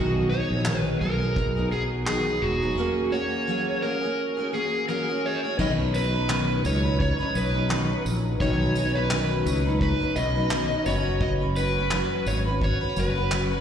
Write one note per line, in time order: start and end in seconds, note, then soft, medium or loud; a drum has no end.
0.00 0.40 B1 loud
0.00 0.30 B2 medium
0.00 0.30 D#3 medium
0.00 0.29 F#3 medium
0.00 0.30 B3 medium
0.00 0.31 D#4 medium
0.00 0.26 F#4 medium
0.00 0.31 G#4 medium
0.29 0.65 F#3 medium
0.29 0.66 B3 medium
0.29 0.66 D#4 medium
0.29 0.66 G#4 medium
0.29 0.79 C#5 loud
0.50 0.79 A#1 medium
0.65 1.01 B2 medium
0.65 1.01 D#3 medium
0.65 1.00 F#3 medium
0.65 1.01 B3 medium
0.65 1.02 D#4 medium
0.65 1.02 G#4 medium
0.65 clap medium
0.79 0.96 B4 loud
1.01 2.38 B1 medium
1.01 1.20 F#3 soft
1.01 1.21 B3 medium
1.01 1.20 D#4 soft
1.01 1.19 G#4 medium
1.01 1.72 A#4 medium
1.20 1.57 F#3 soft
1.20 1.56 B3 soft
1.20 1.56 D#4 soft
1.20 1.55 G#4 soft
1.36 kick loud
1.56 1.70 F#3 soft
1.56 1.71 B3 medium
1.56 1.72 D#4 soft
1.56 1.71 G#4 soft
1.71 2.06 F#3 medium
1.71 2.07 B3 medium
1.71 2.07 D#4 medium
1.71 1.82 G#4 medium
1.71 2.08 G#4 medium
2.07 2.26 B2 medium
2.07 2.26 D#3 medium
2.07 2.26 F#3 medium
2.07 2.27 B3 medium
2.07 2.26 D#4 medium
2.07 2.43 G#4 medium
2.07 2.25 G#4 medium
2.07 clap loud
2.26 2.63 F#3 soft
2.26 2.62 B3 soft
2.26 2.61 D#4 medium
2.26 2.60 G#4 soft
2.42 2.71 E1 medium
2.42 3.14 F#4 medium
2.61 2.76 F#3 soft
2.61 2.78 B3 soft
2.61 2.78 D#4 soft
2.61 2.77 G#4 soft
2.77 3.12 F#3 medium
2.77 3.10 A#3 medium
2.77 3.12 C#4 medium
2.77 3.12 F#4 medium
2.77 3.13 G#4 medium
3.12 3.47 A#3 medium
3.12 3.47 C#4 medium
3.12 3.47 F#4 medium
3.12 3.48 G#4 medium
3.12 3.85 C#5 loud
3.47 3.83 F#3 medium
3.47 3.81 A#3 medium
3.47 3.82 C#4 medium
3.47 3.83 F#4 medium
3.47 3.83 G#4 medium
3.82 4.02 A#3 soft
3.82 4.02 C#4 medium
3.82 4.02 F#4 soft
3.82 4.00 G#4 medium
3.82 4.54 A#4 medium
4.01 4.38 C#4 soft
4.01 4.37 F#4 soft
4.01 4.36 G#4 medium
4.37 4.52 C#4 soft
4.37 4.53 F#4 medium
4.37 4.53 G#4 medium
4.53 4.87 A#3 medium
4.53 4.88 C#4 medium
4.53 4.88 F#4 medium
4.53 4.88 G#4 medium
4.53 4.89 G#4 medium
4.88 5.08 F#3 medium
4.88 5.08 A#3 medium
4.88 5.08 C#4 medium
4.88 5.08 F#4 medium
4.88 5.07 G#4 medium
4.88 5.39 A#4 medium
5.08 5.44 C#4 soft
5.08 5.44 F#4 soft
5.08 5.42 G#4 medium
5.26 5.60 C#5 medium
5.43 5.59 C#4 soft
5.43 5.60 F#4 soft
5.43 5.59 G#4 soft
5.57 6.60 B1 loud
5.57 5.78 B2 medium
5.57 5.78 D#3 medium
5.57 5.79 F#3 medium
5.57 8.35 B3 medium
5.57 5.78 C#4 medium
5.57 8.36 D#4 medium
5.57 5.78 D#4 medium
5.57 5.76 B4 medium
5.57 8.37 C#5 medium
5.57 5.70 D#5 loud
5.57 kick loud
5.57 crash loud
5.77 5.93 F#3 soft
5.77 5.94 C#4 soft
5.77 5.94 D#4 medium
5.77 5.93 B4 soft
5.94 6.13 F#3 medium
5.94 6.13 C#4 medium
5.94 6.13 D#4 medium
5.94 6.61 B4 medium
5.94 6.11 B4 medium
5.94 tambourine medium
6.13 6.28 F#3 soft
6.13 6.29 C#4 soft
6.13 6.29 D#4 medium
6.13 6.29 B4 medium
6.28 6.64 B2 medium
6.28 6.64 D#3 medium
6.28 6.62 F#3 medium
6.28 6.63 C#4 medium
6.28 6.64 D#4 medium
6.28 6.65 B4 medium
6.28 clap loud
6.64 7.09 C#2 medium
6.64 6.83 F#3 medium
6.64 6.84 C#4 soft
6.64 6.83 D#4 medium
6.64 6.82 B4 medium
6.64 7.00 C#5 medium
6.64 tambourine medium
6.83 7.20 F#3 soft
6.83 7.19 C#4 soft
6.83 7.18 D#4 medium
6.83 7.17 B4 medium
7.00 7.33 C#5 medium
7.00 kick medium
7.18 7.33 F#3 soft
7.18 7.34 C#4 medium
7.18 7.35 D#4 medium
7.18 7.34 B4 medium
7.34 7.93 B1 medium
7.34 7.54 F#3 soft
7.34 7.54 C#4 medium
7.34 7.53 D#4 medium
7.34 7.52 B4 medium
7.34 8.02 B4 medium
7.34 tambourine medium
7.53 7.69 F#3 soft
7.53 7.69 C#4 medium
7.53 7.69 D#4 medium
7.53 7.69 B4 medium
7.69 7.89 B2 medium
7.69 7.89 D#3 medium
7.69 7.89 F#3 medium
7.69 7.89 C#4 medium
7.69 7.88 D#4 medium
7.69 7.87 B4 medium
7.69 clap loud
7.88 8.40 F#3 soft
7.88 8.41 C#4 soft
7.88 8.40 D#4 medium
7.88 8.40 B4 soft
8.05 8.34 A#1 medium
8.05 tambourine medium
8.38 9.42 B1 medium
8.38 8.75 B2 medium
8.38 8.75 D#3 medium
8.38 8.73 F#3 medium
8.38 10.81 B3 medium
8.38 10.82 D#4 medium
8.38 10.83 C#5 medium
8.38 8.97 C#5 loud
8.38 kick loud
8.42 8.74 C#4 medium
8.42 8.76 D#4 medium
8.42 8.76 B4 medium
8.75 8.94 F#3 medium
8.75 8.95 C#4 medium
8.75 8.95 D#4 medium
8.75 8.93 B4 medium
8.75 tambourine medium
8.95 9.11 F#3 soft
8.95 9.11 C#4 soft
8.95 9.11 D#4 soft
8.95 9.10 B4 medium
8.95 9.81 B4 medium
9.10 9.45 B2 medium
9.10 9.46 D#3 medium
9.10 9.44 F#3 medium
9.10 9.45 C#4 medium
9.10 9.46 D#4 medium
9.10 9.47 B4 medium
9.10 clap loud
9.46 9.90 C#2 medium
9.46 9.65 F#3 medium
9.46 9.65 C#4 medium
9.46 9.65 D#4 medium
9.46 9.64 B4 medium
9.46 tambourine medium
9.65 10.01 F#3 soft
9.65 10.00 C#4 medium
9.65 9.99 D#4 medium
9.65 9.98 B4 medium
9.81 10.17 B4 medium
9.81 kick loud
9.99 10.14 F#3 soft
9.99 10.15 C#4 soft
9.99 10.16 D#4 soft
9.99 10.15 B4 medium
10.15 10.73 B1 medium
10.15 10.35 F#3 medium
10.15 10.35 C#4 medium
10.15 10.35 D#4 medium
10.15 10.34 B4 medium
10.15 10.88 D#5 loud
10.15 tambourine medium
10.35 10.50 F#3 soft
10.35 10.51 C#4 medium
10.35 10.51 D#4 soft
10.35 10.51 B4 medium
10.51 10.70 B2 medium
10.51 10.70 D#3 medium
10.51 10.70 F#3 medium
10.51 10.71 C#4 medium
10.51 10.71 D#4 medium
10.51 10.70 B4 medium
10.51 clap loud
10.71 10.85 F#3 soft
10.71 10.86 C#4 soft
10.71 10.87 D#4 medium
10.71 10.86 B4 medium
10.84 12.01 F#1 loud
10.84 11.41 F#3 medium
10.84 13.61 B3 medium
10.84 11.41 C#4 medium
10.84 13.61 F#4 medium
10.84 11.40 F#4 medium
10.84 11.22 C#5 medium
10.84 tambourine medium
10.88 11.39 B4 medium
10.88 13.61 C#5 medium
11.21 11.31 D#5 loud
11.21 kick loud
11.40 11.56 C#4 soft
11.40 11.57 F#4 soft
11.40 11.56 B4 soft
11.56 11.76 F#3 medium
11.56 11.76 C#4 medium
11.56 11.77 F#4 medium
11.56 12.29 B4 medium
11.56 11.75 B4 medium
11.56 tambourine medium
11.76 11.91 C#4 soft
11.76 11.92 F#4 medium
11.76 11.92 B4 medium
11.91 12.25 F#3 medium
11.91 12.26 C#4 medium
11.91 12.27 F#4 medium
11.91 12.28 B4 medium
11.91 clap loud
12.26 12.71 G#1 medium
12.26 12.45 F#3 medium
12.26 12.46 C#4 soft
12.26 12.45 F#4 medium
12.26 12.44 B4 medium
12.26 12.37 C#5 medium
12.26 tambourine medium
12.45 12.82 C#4 soft
12.45 12.81 F#4 soft
12.45 12.80 B4 medium
12.61 12.99 C#5 loud
12.61 kick loud
12.81 12.97 C#4 soft
12.81 12.97 F#4 soft
12.81 12.97 B4 medium
12.96 13.54 F#1 medium
12.96 13.16 F#3 medium
12.96 13.17 C#4 medium
12.96 13.16 F#4 medium
12.96 13.61 B4 medium
12.96 13.15 B4 medium
12.96 tambourine medium
13.16 13.31 C#4 soft
13.16 13.33 F#4 medium
13.16 13.32 B4 medium
13.31 13.51 F#3 medium
13.31 13.51 C#4 medium
13.31 13.51 F#4 medium
13.31 13.50 B4 medium
13.31 clap loud
13.51 13.61 C#4 soft
13.51 13.61 F#4 medium
13.51 13.61 B4 medium